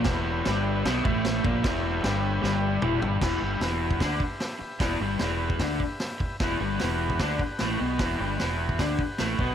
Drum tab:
CC |x---x---x---x---|x---x-----------|x---------------|----------------|
HH |----------------|----------------|----o---o---o---|o---o---o---o---|
SD |o---o---o---o---|o---o---o-------|o---o---o---o---|o---o---o---o---|
T2 |----------------|------------o---|----------------|----------------|
FT |----------------|--------------o-|----------------|----------------|
BD |o---------o---o-|o---------------|o------oo-o-----|o------oo-o---o-|

CC |----------------|----------------|
HH |o---o---o---o---|o---o---o---o---|
SD |o---o---o---o---|o---o---o---o---|
T2 |----------------|----------------|
FT |----------------|----------------|
BD |o------oo-o-----|o------oo-o---o-|